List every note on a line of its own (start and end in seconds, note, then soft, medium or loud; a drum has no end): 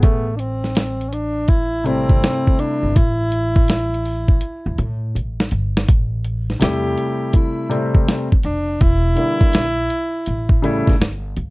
0.00 2.06 A1 loud
0.00 0.37 A3 medium
0.00 0.25 B3 medium
0.00 0.24 G#4 medium
0.00 kick loud
0.00 closed hi-hat medium
0.36 1.11 C4 medium
0.36 0.41 D4 medium
0.36 closed hi-hat medium
0.64 snare soft
0.75 snare loud
0.75 closed hi-hat medium
1.01 closed hi-hat medium
1.09 1.15 C#4 medium
1.09 closed hi-hat medium
1.13 1.51 D4 medium
1.48 1.87 E4 medium
1.48 kick medium
1.48 closed hi-hat medium
1.84 2.90 C3 medium
1.84 2.90 G3 medium
1.84 2.90 A3 medium
1.84 2.61 C4 loud
1.84 2.91 E4 medium
1.84 closed hi-hat medium
2.09 2.21 G1 medium
2.09 kick medium
2.24 snare loud
2.24 closed hi-hat medium
2.47 kick medium
2.59 2.98 D4 medium
2.59 closed hi-hat medium
2.83 2.94 G1 medium
2.96 4.38 A1 loud
2.96 5.15 E4 loud
2.96 kick loud
2.96 closed hi-hat loud
3.32 closed hi-hat medium
3.56 kick loud
3.68 snare loud
3.68 closed hi-hat medium
3.94 closed hi-hat medium
4.05 open hi-hat medium
4.28 kick medium
4.41 closed hi-hat medium
4.66 4.77 E2 medium
4.78 5.17 A2 loud
4.78 closed hi-hat medium
5.15 5.48 A1 medium
5.15 closed hi-hat medium
5.40 snare medium
5.51 5.84 G1 medium
5.51 closed hi-hat medium
5.77 snare medium
5.89 6.53 A1 loud
5.89 kick loud
5.89 closed hi-hat loud
6.25 closed hi-hat medium
6.50 snare soft
6.59 6.94 E2 medium
6.59 7.65 C3 medium
6.59 7.66 G3 medium
6.59 7.66 A3 medium
6.59 7.66 E4 medium
6.59 7.31 G4 loud
6.59 snare loud
6.59 closed hi-hat loud
6.98 closed hi-hat medium
7.33 8.04 E4 medium
7.33 kick medium
7.33 closed hi-hat medium
7.69 8.26 C3 medium
7.69 8.26 G3 medium
7.69 8.27 A3 medium
7.69 8.27 C4 medium
7.69 closed hi-hat medium
7.95 8.06 E2 medium
7.95 kick medium
8.08 snare loud
8.08 closed hi-hat loud
8.32 kick medium
8.43 8.77 F1 medium
8.43 8.84 D4 medium
8.43 closed hi-hat medium
8.81 9.13 E1 loud
8.81 11.01 E4 loud
8.81 kick loud
8.81 closed hi-hat loud
9.15 9.63 D3 medium
9.15 9.63 G3 medium
9.15 9.64 A#3 medium
9.15 9.64 E4 medium
9.15 closed hi-hat medium
9.41 kick medium
9.53 9.87 A#1 medium
9.53 snare loud
9.53 closed hi-hat medium
9.90 closed hi-hat medium
10.26 10.81 A1 medium
10.26 closed hi-hat medium
10.49 kick medium
10.62 10.92 C#3 medium
10.62 10.92 G3 medium
10.62 10.93 A3 medium
10.62 10.93 E4 medium
10.62 closed hi-hat medium
10.87 10.99 A1 medium
10.87 kick medium
10.87 snare soft
11.00 11.33 G1 medium
11.00 snare loud
11.00 closed hi-hat medium
11.37 11.50 C#2 medium
11.37 closed hi-hat medium